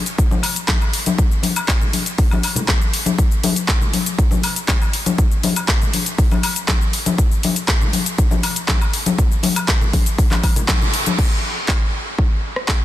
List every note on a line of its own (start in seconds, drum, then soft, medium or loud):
0.06 closed hi-hat medium
0.06 shaker medium
0.18 kick loud
0.18 closed hi-hat soft
0.18 shaker medium
0.31 high conga medium
0.31 low conga medium
0.31 shaker soft
0.43 open hi-hat loud
0.43 high woodblock medium
0.56 closed hi-hat medium
0.56 shaker medium
0.68 kick loud
0.68 clap loud
0.68 closed hi-hat medium
0.68 high conga medium
0.68 shaker medium
0.81 high woodblock medium
0.81 shaker soft
0.93 open hi-hat loud
1.06 closed hi-hat medium
1.06 high conga medium
1.06 shaker medium
1.18 kick loud
1.18 closed hi-hat soft
1.18 shaker medium
1.31 shaker soft
1.43 open hi-hat loud
1.43 high conga medium
1.56 closed hi-hat medium
1.56 high woodblock medium
1.56 shaker medium
1.68 kick loud
1.68 clap loud
1.68 closed hi-hat soft
1.68 shaker medium
1.81 low conga medium
1.81 shaker soft
1.93 open hi-hat loud
1.93 high conga medium
2.06 closed hi-hat medium
2.06 shaker medium
2.18 kick loud
2.18 open hi-hat medium
2.18 shaker medium
2.31 high conga medium
2.31 high woodblock medium
2.31 shaker soft
2.43 open hi-hat loud
2.43 high woodblock medium
2.56 closed hi-hat medium
2.56 low conga medium
2.56 shaker medium
2.68 kick loud
2.68 clap loud
2.68 closed hi-hat soft
2.68 high conga medium
2.68 shaker soft
2.82 shaker soft
2.93 open hi-hat loud
3.06 closed hi-hat medium
3.06 high conga medium
3.06 shaker medium
3.18 kick loud
3.18 closed hi-hat medium
3.18 shaker medium
3.32 shaker soft
3.44 open hi-hat loud
3.44 high conga medium
3.56 closed hi-hat medium
3.56 shaker medium
3.69 kick loud
3.69 clap loud
3.69 closed hi-hat soft
3.69 shaker medium
3.81 low conga medium
3.81 shaker soft
3.93 open hi-hat loud
3.93 high conga medium
4.06 closed hi-hat medium
4.06 shaker medium
4.18 kick loud
4.18 closed hi-hat medium
4.18 shaker medium
4.31 high conga medium
4.31 low conga medium
4.31 shaker soft
4.43 open hi-hat loud
4.43 high woodblock medium
4.56 closed hi-hat medium
4.56 shaker medium
4.68 kick loud
4.68 clap loud
4.68 closed hi-hat soft
4.68 high conga medium
4.68 shaker medium
4.82 high woodblock medium
4.82 shaker soft
4.93 open hi-hat loud
5.06 closed hi-hat medium
5.06 high conga medium
5.06 shaker medium
5.18 kick loud
5.18 closed hi-hat soft
5.18 shaker medium
5.31 shaker soft
5.43 open hi-hat medium
5.43 high conga medium
5.56 closed hi-hat medium
5.56 high woodblock medium
5.56 shaker medium
5.68 kick loud
5.68 clap loud
5.68 closed hi-hat soft
5.68 shaker medium
5.82 low conga medium
5.82 shaker soft
5.93 open hi-hat loud
5.93 high conga medium
6.06 closed hi-hat medium
6.06 shaker medium
6.18 kick loud
6.18 open hi-hat medium
6.18 shaker medium
6.31 high conga medium
6.31 high woodblock medium
6.31 shaker soft
6.43 open hi-hat loud
6.43 high woodblock medium
6.56 closed hi-hat medium
6.56 shaker medium
6.68 kick loud
6.68 clap loud
6.68 closed hi-hat medium
6.68 high conga medium
6.68 shaker medium
6.81 shaker soft
6.93 open hi-hat loud
7.06 closed hi-hat medium
7.06 high conga medium
7.06 shaker medium
7.18 kick loud
7.18 closed hi-hat medium
7.18 shaker medium
7.31 shaker soft
7.43 open hi-hat medium
7.43 high conga medium
7.56 closed hi-hat medium
7.56 shaker medium
7.68 kick loud
7.68 clap loud
7.68 closed hi-hat medium
7.68 shaker medium
7.81 low conga medium
7.81 shaker soft
7.93 open hi-hat loud
7.93 high conga medium
8.06 closed hi-hat medium
8.06 shaker medium
8.18 kick loud
8.18 closed hi-hat medium
8.18 shaker medium
8.31 high conga medium
8.31 low conga medium
8.31 shaker soft
8.43 open hi-hat loud
8.43 high woodblock medium
8.56 closed hi-hat medium
8.56 shaker medium
8.68 kick loud
8.68 clap loud
8.68 closed hi-hat medium
8.68 high conga medium
8.68 shaker medium
8.81 high woodblock medium
8.81 shaker soft
8.93 open hi-hat loud
9.06 closed hi-hat medium
9.06 high conga medium
9.06 shaker medium
9.19 kick loud
9.19 closed hi-hat medium
9.19 shaker medium
9.32 shaker soft
9.43 open hi-hat loud
9.43 high conga medium
9.56 closed hi-hat medium
9.56 high woodblock medium
9.56 shaker medium
9.68 kick loud
9.68 clap loud
9.68 closed hi-hat medium
9.68 shaker medium
9.81 low conga medium
9.81 shaker soft
9.93 kick medium
9.93 open hi-hat loud
9.93 high conga medium
10.06 closed hi-hat medium
10.06 shaker medium
10.18 kick loud
10.18 open hi-hat medium
10.18 shaker medium
10.31 clap soft
10.31 high conga loud
10.31 high woodblock medium
10.31 shaker soft
10.43 kick medium
10.43 open hi-hat loud
10.43 high woodblock medium
10.56 closed hi-hat medium
10.56 low conga medium
10.56 shaker medium
10.68 kick loud
10.68 clap loud
10.68 closed hi-hat medium
10.68 high conga medium
10.68 shaker medium
10.82 low conga medium
10.82 shaker soft
10.94 open hi-hat loud
11.06 closed hi-hat medium
11.06 high conga medium
11.06 shaker medium
11.19 kick loud
11.19 crash medium
11.68 kick loud
11.68 clap loud
12.19 kick loud
12.56 cross-stick medium
12.69 kick loud
12.69 clap loud